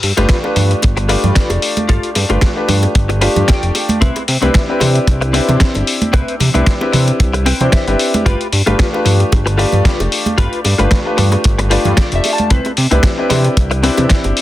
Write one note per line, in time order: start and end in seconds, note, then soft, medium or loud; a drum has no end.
0.03 0.13 G2 medium
0.03 open hi-hat medium
0.17 0.26 G1 medium
0.17 0.40 A3 medium
0.17 0.40 D4 medium
0.17 0.37 F4 medium
0.17 0.41 F4 medium
0.17 0.37 G4 medium
0.17 0.41 G4 medium
0.17 0.41 B4 medium
0.17 0.37 B4 medium
0.17 closed hi-hat soft
0.17 high bongo medium
0.17 high conga medium
0.29 kick loud
0.29 snare loud
0.29 closed hi-hat medium
0.43 1.06 A3 medium
0.43 1.06 D4 medium
0.43 1.06 F4 medium
0.43 1.07 G4 medium
0.43 1.07 B4 medium
0.43 high bongo soft
0.56 0.74 G2 medium
0.56 muted clean electric guitar stroke medium
0.56 open hi-hat medium
0.56 low conga medium
0.71 muted clean electric guitar stroke soft
0.71 closed hi-hat soft
0.82 1.16 G1 medium
0.82 kick loud
0.82 closed hi-hat medium
0.82 high bongo medium
0.97 muted clean electric guitar stroke loud
0.97 closed hi-hat soft
1.08 2.26 A3 medium
1.08 2.26 D4 medium
1.08 1.50 F4 medium
1.08 2.27 F4 medium
1.08 1.50 G4 medium
1.08 2.27 G4 medium
1.08 1.51 B4 medium
1.08 2.27 D5 loud
1.08 open hi-hat loud
1.08 high bongo soft
1.24 1.32 G2 medium
1.24 closed hi-hat soft
1.24 low conga medium
1.35 kick loud
1.35 snare loud
1.35 closed hi-hat medium
1.50 1.58 F1 medium
1.50 closed hi-hat soft
1.50 high bongo medium
1.62 open hi-hat loud
1.77 closed hi-hat soft
1.77 high bongo soft
1.77 high conga medium
1.89 1.99 G1 loud
1.89 2.10 F4 loud
1.89 2.10 G4 medium
1.89 2.10 A4 loud
1.89 kick loud
1.89 closed hi-hat medium
2.03 closed hi-hat soft
2.15 2.25 G2 medium
2.15 open hi-hat loud
2.15 high bongo medium
2.30 2.38 G1 medium
2.30 2.53 A3 medium
2.30 2.53 D4 medium
2.30 2.49 F4 medium
2.30 2.53 F4 medium
2.30 2.50 G4 medium
2.30 2.53 G4 medium
2.30 2.53 B4 medium
2.30 2.50 B4 medium
2.30 closed hi-hat soft
2.30 high conga medium
2.41 kick loud
2.41 snare loud
2.41 closed hi-hat medium
2.41 high bongo medium
2.56 3.18 A3 medium
2.56 3.19 D4 medium
2.56 3.19 F4 medium
2.56 3.19 G4 medium
2.56 3.19 B4 medium
2.68 2.87 G2 loud
2.68 muted clean electric guitar stroke medium
2.68 open hi-hat medium
2.68 low conga medium
2.83 muted clean electric guitar stroke soft
2.83 closed hi-hat soft
2.83 high bongo medium
2.95 3.28 G1 loud
2.95 kick loud
2.95 closed hi-hat medium
3.09 muted clean electric guitar stroke loud
3.09 closed hi-hat soft
3.09 high bongo soft
3.21 4.00 A3 medium
3.21 4.00 D4 medium
3.21 3.63 F4 medium
3.21 4.00 F4 medium
3.21 3.63 G4 medium
3.21 4.00 G4 medium
3.21 3.63 B4 medium
3.21 4.01 D5 loud
3.21 open hi-hat loud
3.36 3.44 G2 medium
3.36 closed hi-hat soft
3.36 low conga medium
3.48 3.98 G5 medium
3.48 kick loud
3.48 snare loud
3.48 closed hi-hat medium
3.48 high bongo medium
3.63 3.71 F1 medium
3.63 closed hi-hat soft
3.75 open hi-hat loud
3.75 high bongo medium
3.89 closed hi-hat soft
3.89 high conga medium
4.01 4.11 C2 loud
4.01 4.22 C4 loud
4.01 4.22 E4 medium
4.01 4.22 B4 loud
4.01 kick loud
4.01 closed hi-hat medium
4.16 closed hi-hat soft
4.16 high bongo medium
4.28 4.38 C3 medium
4.28 open hi-hat loud
4.42 4.50 C2 medium
4.42 4.62 C4 medium
4.42 4.65 C4 medium
4.42 4.65 D4 medium
4.42 4.66 E4 medium
4.42 4.62 E4 medium
4.42 4.66 G4 medium
4.42 4.62 B4 loud
4.42 4.66 B4 medium
4.42 closed hi-hat soft
4.42 high bongo soft
4.42 high conga medium
4.54 kick loud
4.54 snare loud
4.54 closed hi-hat medium
4.68 5.31 C4 medium
4.68 5.31 D4 medium
4.68 5.31 E4 medium
4.68 5.32 G4 medium
4.68 5.32 B4 medium
4.80 4.99 C3 loud
4.80 muted clean electric guitar stroke medium
4.80 open hi-hat loud
4.80 high bongo medium
4.80 low conga medium
4.95 muted clean electric guitar stroke soft
4.95 closed hi-hat soft
5.07 5.40 C2 medium
5.07 kick loud
5.07 closed hi-hat medium
5.07 high bongo soft
5.21 muted clean electric guitar stroke loud
5.21 closed hi-hat soft
5.33 5.75 C4 medium
5.33 6.51 C4 loud
5.33 6.51 D4 medium
5.33 5.75 E4 medium
5.33 6.51 E4 medium
5.33 6.52 G4 medium
5.33 5.75 B4 medium
5.33 open hi-hat loud
5.49 5.57 C3 medium
5.49 closed hi-hat soft
5.49 high bongo medium
5.49 low conga medium
5.60 kick loud
5.60 snare loud
5.60 closed hi-hat medium
5.75 5.83 G1 medium
5.75 closed hi-hat soft
5.75 high bongo soft
5.87 open hi-hat loud
6.02 closed hi-hat soft
6.02 high conga medium
6.13 6.23 C2 loud
6.13 6.34 C4 loud
6.13 6.34 E4 medium
6.13 6.34 B4 loud
6.13 kick loud
6.13 closed hi-hat medium
6.13 high bongo medium
6.28 closed hi-hat soft
6.40 6.50 C3 medium
6.40 open hi-hat loud
6.40 high bongo soft
6.40 low conga medium
6.54 6.63 C2 medium
6.54 6.74 C4 medium
6.54 6.78 C4 medium
6.54 6.78 D4 medium
6.54 6.74 E4 medium
6.54 6.78 E4 medium
6.54 6.78 G4 medium
6.54 6.74 B4 medium
6.54 6.78 B4 medium
6.54 closed hi-hat soft
6.54 high conga medium
6.66 kick loud
6.66 snare loud
6.66 closed hi-hat medium
6.80 7.43 C4 medium
6.80 7.43 D4 medium
6.80 7.44 E4 medium
6.80 7.44 G4 medium
6.80 7.44 B4 medium
6.80 high bongo medium
6.93 7.12 C3 loud
6.93 muted clean electric guitar stroke medium
6.93 open hi-hat loud
6.93 low conga medium
7.07 muted clean electric guitar stroke soft
7.07 closed hi-hat soft
7.07 high bongo soft
7.20 7.53 C2 medium
7.20 kick loud
7.20 closed hi-hat medium
7.34 muted clean electric guitar stroke loud
7.34 closed hi-hat soft
7.46 7.87 C4 medium
7.46 7.87 E4 medium
7.46 7.88 B4 medium
7.46 7.71 G5 medium
7.46 open hi-hat loud
7.46 high bongo medium
7.60 7.69 C3 medium
7.60 7.84 C4 medium
7.60 7.84 D4 medium
7.60 7.84 E4 medium
7.60 7.84 G4 medium
7.60 7.84 C5 medium
7.60 closed hi-hat soft
7.60 low conga medium
7.72 8.22 E5 medium
7.72 kick loud
7.72 snare loud
7.72 closed hi-hat medium
7.72 high bongo soft
7.87 7.96 G1 medium
7.87 8.25 C4 medium
7.87 8.25 D4 medium
7.87 8.25 E4 medium
7.87 8.25 G4 medium
7.87 8.25 B4 medium
7.87 closed hi-hat soft
7.99 open hi-hat loud
8.14 closed hi-hat soft
8.14 high bongo medium
8.14 high conga medium
8.26 8.36 G1 loud
8.26 8.46 F4 loud
8.26 8.47 G4 medium
8.26 8.47 B4 loud
8.26 kick loud
8.26 closed hi-hat medium
8.26 high bongo soft
8.41 closed hi-hat soft
8.53 8.62 G2 medium
8.53 open hi-hat loud
8.66 8.75 G1 medium
8.66 8.90 A3 medium
8.66 8.90 D4 medium
8.66 8.86 F4 medium
8.66 8.90 F4 medium
8.66 8.86 G4 medium
8.66 8.90 G4 medium
8.66 8.87 B4 medium
8.66 8.90 B4 medium
8.66 closed hi-hat soft
8.66 high bongo medium
8.66 high conga medium
8.79 kick loud
8.79 snare loud
8.79 closed hi-hat medium
8.93 9.56 A3 medium
8.93 9.56 D4 medium
8.93 9.56 F4 medium
8.93 9.56 G4 medium
8.93 9.57 B4 loud
8.93 high bongo medium
9.05 9.24 G2 loud
9.05 muted clean electric guitar stroke medium
9.05 open hi-hat loud
9.05 low conga medium
9.19 muted clean electric guitar stroke soft
9.19 closed hi-hat soft
9.32 9.65 G1 medium
9.32 kick loud
9.32 closed hi-hat medium
9.32 high bongo medium
9.46 muted clean electric guitar stroke loud
9.46 closed hi-hat soft
9.57 10.75 A3 medium
9.57 10.76 D4 medium
9.57 9.99 F4 medium
9.57 10.76 F4 medium
9.57 10.00 G4 medium
9.57 10.76 G4 medium
9.57 10.00 B4 loud
9.57 10.77 D5 loud
9.57 open hi-hat loud
9.57 high bongo soft
9.72 9.81 G2 medium
9.72 closed hi-hat soft
9.72 low conga medium
9.85 kick loud
9.85 snare loud
9.85 closed hi-hat medium
10.00 10.08 F1 medium
10.00 closed hi-hat soft
10.00 high bongo medium
10.12 open hi-hat loud
10.26 closed hi-hat soft
10.26 high bongo soft
10.26 high conga medium
10.38 10.48 G1 loud
10.38 10.59 F4 loud
10.38 10.59 G4 medium
10.38 10.59 B4 loud
10.38 kick loud
10.38 closed hi-hat medium
10.53 closed hi-hat soft
10.65 10.75 G2 medium
10.65 open hi-hat loud
10.65 high bongo medium
10.78 10.88 G1 medium
10.78 11.02 A3 medium
10.78 11.02 D4 medium
10.78 10.98 F4 medium
10.78 11.03 F4 medium
10.78 10.99 G4 medium
10.78 11.03 G4 medium
10.78 10.99 B4 loud
10.78 11.03 B4 medium
10.78 closed hi-hat soft
10.78 high conga medium
10.91 kick loud
10.91 snare loud
10.91 closed hi-hat medium
10.91 high bongo medium
11.05 11.68 A3 medium
11.05 11.68 D4 medium
11.05 11.68 F4 medium
11.05 11.69 G4 medium
11.05 11.69 B4 medium
11.17 11.36 G2 loud
11.17 muted clean electric guitar stroke medium
11.17 open hi-hat medium
11.17 low conga medium
11.32 muted clean electric guitar stroke soft
11.32 closed hi-hat soft
11.32 high bongo medium
11.44 11.78 G1 medium
11.44 kick loud
11.44 closed hi-hat medium
11.59 muted clean electric guitar stroke loud
11.59 closed hi-hat soft
11.59 high bongo soft
11.70 12.49 A3 medium
11.70 12.49 D4 medium
11.70 12.12 F4 medium
11.70 12.50 F4 medium
11.70 12.12 G4 medium
11.70 12.50 G4 medium
11.70 11.97 B4 medium
11.70 12.50 D5 loud
11.70 open hi-hat loud
11.85 11.94 G2 medium
11.85 closed hi-hat soft
11.85 low conga medium
11.97 12.14 D5 medium
11.97 kick loud
11.97 snare loud
11.97 closed hi-hat medium
11.97 high bongo medium
12.12 12.20 F1 medium
12.12 12.32 E5 medium
12.12 closed hi-hat soft
12.24 open hi-hat loud
12.24 high bongo soft
12.33 12.50 A5 medium
12.38 closed hi-hat soft
12.38 high conga medium
12.50 12.60 C2 loud
12.50 12.71 C4 loud
12.50 12.71 E4 medium
12.50 12.72 B4 loud
12.50 kick loud
12.50 closed hi-hat medium
12.65 closed hi-hat soft
12.65 high bongo medium
12.77 12.87 C3 medium
12.77 open hi-hat loud
12.91 13.00 C2 medium
12.91 13.11 C4 medium
12.91 13.15 C4 medium
12.91 13.15 D4 medium
12.91 13.11 E4 medium
12.91 13.15 E4 medium
12.91 13.15 G4 medium
12.91 13.11 B4 medium
12.91 13.15 B4 medium
12.91 closed hi-hat soft
12.91 high bongo soft
12.91 high conga medium
13.03 kick loud
13.03 snare loud
13.03 closed hi-hat medium
13.18 13.80 C4 medium
13.18 13.81 D4 medium
13.18 13.81 E4 medium
13.18 13.81 G4 medium
13.18 13.82 B4 medium
13.30 13.49 C3 loud
13.30 muted clean electric guitar stroke medium
13.30 open hi-hat medium
13.30 high bongo medium
13.30 low conga medium
13.44 muted clean electric guitar stroke soft
13.44 closed hi-hat soft
13.57 13.90 C2 medium
13.57 kick loud
13.57 closed hi-hat medium
13.57 high bongo medium
13.71 muted clean electric guitar stroke loud
13.71 closed hi-hat soft
13.83 14.41 C4 loud
13.83 14.24 C4 medium
13.83 14.41 D4 medium
13.83 14.41 E4 medium
13.83 14.25 E4 medium
13.83 14.41 G4 medium
13.83 14.25 B4 medium
13.83 open hi-hat loud
13.97 14.06 C3 medium
13.97 closed hi-hat soft
13.97 high bongo medium
13.97 low conga medium
14.09 kick loud
14.09 snare loud
14.09 closed hi-hat medium
14.24 14.33 G1 medium
14.24 closed hi-hat soft
14.24 high bongo soft
14.37 open hi-hat loud